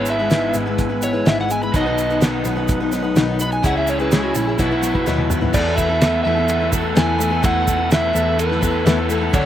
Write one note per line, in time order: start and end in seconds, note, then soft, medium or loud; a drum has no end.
0.00 0.51 G#1 medium
0.00 0.19 G#3 soft
0.00 1.72 G#3 medium
0.00 0.19 B3 soft
0.00 1.73 B3 medium
0.00 0.18 E4 soft
0.00 1.73 E4 loud
0.00 0.18 B4 soft
0.00 1.74 B4 loud
0.00 3.61 B4 medium
0.00 1.73 G#5 medium
0.00 1.73 E6 medium
0.06 closed hi-hat medium
0.06 shaker medium
0.10 0.55 E5 loud
0.19 0.29 G#3 soft
0.19 0.30 B3 soft
0.19 0.30 E4 medium
0.19 0.30 B4 medium
0.30 0.54 G#2 medium
0.30 0.54 E3 medium
0.30 0.52 G#3 medium
0.30 0.53 B3 medium
0.30 0.54 E4 medium
0.30 0.54 B4 medium
0.30 snare loud
0.30 closed hi-hat medium
0.30 shaker medium
0.53 1.22 G#1 medium
0.53 0.66 G#3 medium
0.53 0.66 B3 medium
0.53 0.65 E4 medium
0.53 0.64 B4 medium
0.53 closed hi-hat medium
0.53 shaker medium
0.66 0.90 G#3 soft
0.66 0.89 B3 medium
0.66 0.88 E4 medium
0.66 0.88 B4 medium
0.78 kick loud
0.78 closed hi-hat medium
0.78 shaker medium
0.89 1.00 G#3 soft
0.89 1.01 B3 soft
0.89 1.01 E4 medium
0.89 1.01 B4 medium
1.01 1.13 G#3 medium
1.01 1.13 B3 medium
1.01 1.12 E4 medium
1.01 1.12 B4 medium
1.01 1.26 C#5 medium
1.01 closed hi-hat medium
1.01 shaker medium
1.13 1.25 G#3 soft
1.13 1.25 B3 soft
1.13 1.25 E4 medium
1.13 1.25 B4 medium
1.25 1.70 G#1 loud
1.25 1.49 G#2 medium
1.25 1.50 E3 medium
1.25 1.47 G#3 medium
1.25 1.48 B3 medium
1.25 1.49 E4 medium
1.25 1.50 B4 medium
1.25 1.38 E5 medium
1.25 snare loud
1.25 closed hi-hat medium
1.25 shaker medium
1.39 1.51 F#5 medium
1.39 snare soft
1.49 1.61 G#3 medium
1.49 1.62 B3 medium
1.49 1.61 E4 medium
1.49 1.60 B4 medium
1.49 1.62 G#5 loud
1.49 closed hi-hat medium
1.49 shaker loud
1.61 1.74 G#3 soft
1.61 1.73 B3 soft
1.61 1.74 E4 soft
1.61 1.74 B4 medium
1.61 1.74 B5 medium
1.61 shaker soft
1.74 2.41 B1 medium
1.74 1.86 B2 medium
1.74 1.86 D#3 medium
1.74 1.86 F#3 medium
1.74 1.85 B3 medium
1.74 1.85 D#4 medium
1.74 1.84 B4 medium
1.74 2.21 D#5 loud
1.74 3.63 F#5 medium
1.74 3.63 D#6 medium
1.74 kick loud
1.74 closed hi-hat medium
1.74 shaker medium
1.85 2.10 F#3 soft
1.85 2.10 B3 soft
1.85 2.09 D#4 medium
1.85 2.08 B4 soft
1.98 closed hi-hat medium
1.98 shaker loud
2.09 2.20 F#3 soft
2.09 2.20 B3 soft
2.09 2.21 D#4 medium
2.09 2.21 B4 soft
2.09 shaker soft
2.20 2.45 B2 medium
2.20 2.45 D#3 medium
2.20 2.43 F#3 medium
2.20 2.43 B3 medium
2.20 2.45 D#4 medium
2.20 2.45 B4 medium
2.20 snare loud
2.20 closed hi-hat medium
2.20 shaker medium
2.44 3.13 B1 medium
2.44 2.57 F#3 medium
2.44 2.56 B3 medium
2.44 2.56 D#4 medium
2.44 2.54 B4 medium
2.44 closed hi-hat medium
2.44 shaker medium
2.56 2.81 F#3 medium
2.56 2.81 B3 medium
2.56 2.80 D#4 medium
2.56 2.79 B4 medium
2.68 kick loud
2.68 closed hi-hat medium
2.68 shaker medium
2.80 2.90 F#3 medium
2.80 2.91 B3 medium
2.80 2.92 D#4 medium
2.80 2.93 B4 medium
2.91 3.03 F#3 medium
2.91 3.03 B3 medium
2.91 3.02 D#4 medium
2.91 3.01 B4 medium
2.91 closed hi-hat medium
2.91 shaker loud
3.02 3.16 F#3 soft
3.02 3.15 B3 medium
3.02 3.16 D#4 medium
3.02 3.16 B4 medium
3.16 3.60 B1 loud
3.16 3.40 B2 medium
3.16 3.40 D#3 medium
3.16 3.38 F#3 medium
3.16 3.39 B3 loud
3.16 3.39 D#4 loud
3.16 3.40 B4 loud
3.16 snare loud
3.16 closed hi-hat loud
3.16 shaker medium
3.39 3.63 F#3 medium
3.39 3.63 B3 medium
3.39 3.64 D#4 medium
3.39 3.64 B4 medium
3.39 3.52 B5 loud
3.39 closed hi-hat medium
3.39 shaker loud
3.52 3.64 G#5 medium
3.52 shaker soft
3.63 4.32 C#2 loud
3.63 3.75 C#3 medium
3.63 3.76 G#3 medium
3.63 3.76 C#4 medium
3.63 3.76 E4 medium
3.63 3.74 G#4 medium
3.63 4.59 C#5 medium
3.63 3.77 F#5 loud
3.63 4.59 G#5 medium
3.63 5.53 E6 medium
3.63 kick loud
3.63 closed hi-hat loud
3.63 shaker medium
3.76 4.00 C#4 soft
3.76 4.00 E4 medium
3.76 3.98 G#4 soft
3.76 3.88 E5 medium
3.87 4.00 C#5 medium
3.87 closed hi-hat medium
3.87 shaker loud
3.99 4.12 C#4 soft
3.99 4.11 E4 soft
3.99 4.12 G#4 soft
3.99 4.12 B4 medium
3.99 shaker soft
4.11 4.36 C#3 medium
4.11 4.34 G#3 medium
4.11 4.34 C#4 medium
4.11 4.35 E4 medium
4.11 4.23 G#4 medium
4.11 4.35 G#4 medium
4.11 snare loud
4.11 closed hi-hat loud
4.11 shaker medium
4.24 4.35 F#4 medium
4.35 4.58 A#1 medium
4.35 4.47 G#3 medium
4.35 4.47 C#4 medium
4.35 4.58 E4 medium
4.35 4.47 E4 medium
4.35 4.46 G#4 medium
4.35 closed hi-hat medium
4.35 shaker loud
4.47 4.59 C#4 soft
4.47 4.58 E4 soft
4.47 4.59 G#4 medium
4.58 5.03 B1 loud
4.58 4.71 B2 medium
4.58 4.71 E3 medium
4.58 4.71 F#3 medium
4.58 4.71 B3 medium
4.58 5.06 E4 loud
4.58 4.70 E4 medium
4.58 5.54 F#4 loud
4.58 5.53 B4 medium
4.58 4.69 B4 medium
4.58 5.53 F#5 medium
4.58 kick loud
4.58 closed hi-hat medium
4.58 shaker medium
4.71 4.80 F#3 soft
4.71 4.81 B3 medium
4.71 4.82 E4 medium
4.71 4.83 B4 medium
4.81 4.94 F#3 medium
4.81 4.94 B3 medium
4.81 4.93 E4 medium
4.81 4.92 B4 medium
4.81 closed hi-hat medium
4.81 shaker loud
4.94 5.05 F#3 soft
4.94 5.06 B3 medium
4.94 5.06 E4 medium
4.94 5.06 B4 medium
4.94 kick medium
5.06 5.51 D#2 loud
5.06 5.30 B2 medium
5.06 5.30 E3 medium
5.06 5.28 F#3 medium
5.06 5.29 B3 medium
5.06 5.30 E4 medium
5.06 5.31 B4 medium
5.06 snare medium
5.06 shaker medium
5.18 high tom medium
5.30 5.42 F#3 medium
5.30 5.41 B3 medium
5.30 5.41 E4 medium
5.30 5.40 B4 medium
5.30 mid tom medium
5.30 shaker loud
5.41 5.53 F#3 soft
5.41 5.53 B3 medium
5.41 5.53 E4 soft
5.41 5.54 B4 medium
5.41 floor tom medium
5.53 6.00 E2 medium
5.53 6.21 E2 loud
5.53 5.99 B2 medium
5.53 5.89 E3 medium
5.53 5.90 A3 medium
5.53 5.90 B3 medium
5.53 5.89 E4 medium
5.53 5.88 A4 medium
5.53 9.30 A4 medium
5.53 9.29 B4 medium
5.53 5.77 D5 loud
5.53 9.30 E6 medium
5.53 kick loud
5.53 crash loud
5.53 shaker medium
5.76 6.01 E3 medium
5.76 6.02 A3 medium
5.76 6.02 B3 medium
5.76 6.03 E4 medium
5.76 6.22 E5 loud
5.76 kick medium
5.76 shaker loud
5.89 6.25 B3 soft
5.89 6.26 E4 soft
5.89 6.25 A4 medium
6.00 6.75 E2 medium
6.00 6.49 B2 medium
6.00 6.27 E3 medium
6.00 6.26 A3 medium
6.00 6.25 B3 loud
6.00 6.24 E4 medium
6.00 snare loud
6.00 ride bell medium
6.00 shaker medium
6.23 6.93 E2 medium
6.23 6.37 A3 medium
6.23 6.38 B3 medium
6.23 6.37 E4 medium
6.23 6.36 A4 medium
6.23 6.69 E5 medium
6.28 6.47 E3 medium
6.37 6.61 B3 soft
6.37 6.60 E4 soft
6.37 6.59 A4 soft
6.48 6.73 E3 medium
6.48 6.73 A3 medium
6.48 6.72 B3 medium
6.48 6.71 E4 medium
6.48 ride bell medium
6.48 shaker medium
6.60 6.71 B3 soft
6.60 6.72 E4 soft
6.60 6.72 A4 medium
6.72 7.21 E2 medium
6.72 7.21 B2 medium
6.72 6.95 E3 medium
6.72 6.95 A3 medium
6.72 6.95 B3 medium
6.72 6.95 E4 medium
6.72 6.96 A4 medium
6.72 kick medium
6.72 shaker loud
6.95 7.40 E2 medium
6.95 7.20 E3 medium
6.95 7.17 A3 medium
6.95 7.18 B3 medium
6.95 7.19 E4 medium
6.95 7.20 A4 medium
6.95 7.41 G#5 loud
6.95 snare loud
6.95 ride bell medium
6.95 shaker medium
7.18 7.43 E3 medium
7.18 7.31 A3 medium
7.18 7.31 B3 medium
7.18 7.31 E4 medium
7.18 7.29 A4 medium
7.18 shaker loud
7.30 7.42 B3 soft
7.30 7.42 E4 soft
7.30 7.42 A4 medium
7.42 7.88 E2 medium
7.42 8.11 E2 loud
7.42 7.89 B2 loud
7.42 7.78 E3 medium
7.42 7.79 A3 medium
7.42 7.78 B3 medium
7.42 7.77 E4 medium
7.42 7.76 A4 medium
7.42 7.89 F#5 loud
7.42 kick loud
7.42 ride bell medium
7.42 shaker medium
7.66 7.90 E3 medium
7.66 7.91 A3 medium
7.66 7.91 B3 medium
7.66 7.92 E4 medium
7.66 kick medium
7.66 shaker loud
7.77 8.13 B3 soft
7.77 8.13 E4 soft
7.77 8.14 A4 soft
7.90 8.38 E2 medium
7.90 8.38 B2 medium
7.90 8.15 E3 loud
7.90 8.15 A3 medium
7.90 8.13 B3 medium
7.90 8.12 E4 medium
7.90 snare loud
7.90 ride bell medium
7.90 shaker medium
7.94 8.37 E5 medium
8.13 8.82 E2 medium
8.13 8.35 E3 medium
8.13 8.50 A3 medium
8.13 8.50 B3 medium
8.13 8.50 E4 medium
8.13 8.48 A4 medium
8.13 shaker loud
8.36 8.61 E3 medium
8.36 8.61 A3 medium
8.36 8.60 B3 medium
8.36 8.59 E4 medium
8.36 9.06 B4 medium
8.36 ride bell medium
8.36 shaker medium
8.49 8.61 B3 medium
8.49 8.61 E4 soft
8.49 8.62 A4 medium
8.49 snare soft
8.61 9.10 E2 medium
8.61 9.10 B2 medium
8.61 8.83 E3 medium
8.61 8.85 A3 medium
8.61 8.85 B3 medium
8.61 8.85 E4 medium
8.61 8.86 A4 medium
8.61 kick medium
8.61 shaker medium
8.85 9.29 E2 medium
8.85 8.98 E3 medium
8.85 8.98 A3 medium
8.85 8.98 B3 medium
8.85 8.97 E4 medium
8.85 8.96 A4 medium
8.85 snare loud
8.85 ride bell medium
8.85 shaker medium
8.97 9.08 B3 soft
8.97 9.09 E4 soft
8.97 9.09 A4 medium
9.09 9.33 E3 medium
9.09 9.21 A3 medium
9.09 9.21 B3 medium
9.09 9.21 E4 medium
9.09 9.20 A4 medium
9.09 shaker medium
9.21 9.33 B3 soft
9.21 9.34 E4 medium
9.21 9.33 A4 medium
9.33 9.46 D2 loud
9.33 9.46 D3 medium
9.33 9.46 F#3 medium
9.33 9.46 A3 loud
9.33 9.46 D4 medium
9.33 9.46 F#4 medium
9.33 9.46 A4 medium
9.33 9.46 C#5 loud
9.33 9.46 F#5 medium
9.33 9.46 D6 medium
9.33 kick loud
9.33 ride bell medium
9.33 shaker medium